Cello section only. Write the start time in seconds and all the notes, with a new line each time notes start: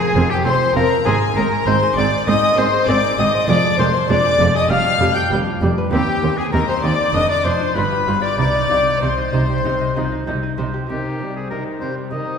0.15 F2
0.46 F2
0.76 F2
1.06 G#2
1.37 G#2
1.67 G#2
1.97 G#2
2.27 G#2
2.57 G#2
2.88 G#2
3.18 G#2
3.48 F2
3.79 F2
4.10 F2
4.40 F2
4.70 F2
5.00 F2
5.31 F2
5.61 F2
5.92 D#2
6.22 D#2
6.53 D#2
6.83 D#2
7.14 F2
7.45 F2
7.76 G2
8.07 G2
8.38 C3
8.70 C3
9.02 C3
9.33 C3
9.64 C3
9.96 C3
10.27 C3
10.58 C3
10.89 C3
11.20 C3
11.51 C3
11.81 C3
12.11 C3